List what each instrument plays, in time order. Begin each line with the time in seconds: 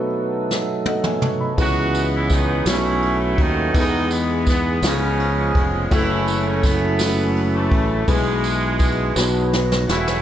Already playing: grand piano B2 B3 D#4 F#4 A4 B4 C5 A5, tonewheel organ F#3 A3 B3 D#4 A4
0.51 snare
0.86 grand piano A4 D#5 F#5, high tom
1.04 grand piano B4 G#5, mid tom
1.22 grand piano C#5 A5, mid tom
1.40 grand piano D#5 B5
1.57 fingered electric bass C#2, grand piano C#3 B3 C#4 E4 G#4 B4, tonewheel organ E3 G#3 B3 C#4 F#4, horn section F#3 B3 F#4, kick, ride, tambourine
1.65 tonewheel organ G#4
1.95 ride, tambourine
2.15 horn section E3 E4
2.30 horn section D#3 D#4, kick, snare, ride, tambourine
2.66 fingered electric bass B1, grand piano B2 B3 C#4 E4 F#4 G#4, horn section E3 A3 C#4 E4, tonewheel organ F#3 A3 B3 C#4 F#4, snare, ride, tambourine
2.73 grand piano A4
3.02 ride
3.21 horn section E3 E4
3.38 fingered electric bass D#2, horn section D#3 D#4, kick, ride
3.73 fingered electric bass E2, horn section D#3 G#3 B3 D#4, grand piano E3 B3 D#4 G#4 A4, tonewheel organ E3 G#3 B3 D#4 G#4, kick, ride, tambourine
3.81 grand piano B4
4.11 horn section B3, ride, tambourine
4.46 horn section B3, kick, snare, ride, tambourine
4.82 fingered electric bass C#2, grand piano C#3 B3 C#4 F4 G#4 B4, horn section C#3 F3 G#3 C#4, tonewheel organ D#3 G#3 B3 C#4 G#4, snare, ride, tambourine
4.91 tonewheel organ F3
5.19 ride
5.55 fingered electric bass F1, kick, ride
5.90 fingered electric bass F#1, horn section E3 A3 C#4 E4, tonewheel organ F#3 A3 C#4 E4 G#4, grand piano A3 C#4 E4 F#4 A4, kick, ride, tambourine
5.97 tonewheel organ A4
6.28 ride, tambourine
6.46 horn section C#3 C#4
6.63 horn section E3 B3, kick, snare, ride, tambourine
6.99 grand piano A3 C#4 E4 F#4 A4, snare, ride, tambourine
7.36 ride
7.54 horn section C#3 E3 A3
7.71 fingered electric bass A1, kick, ride
8.07 fingered electric bass B1, grand piano B2 G#3 B3 E4 G#4 B4, horn section B2 E3 G#3, tonewheel organ B3 E4 G#4, kick, ride, tambourine
8.44 ride, tambourine
8.79 kick, ride, tambourine
9.15 fingered electric bass B1, grand piano B2 B3 D#4 F#4 B4 A5, tonewheel organ F#3 B3 C#4 F#4 B4, snare, tambourine
9.52 tonewheel organ D#5, snare
9.72 snare
9.87 fingered electric bass E1, horn section E3 A3 C#4 E4, tonewheel organ F#5, snare
10.07 snare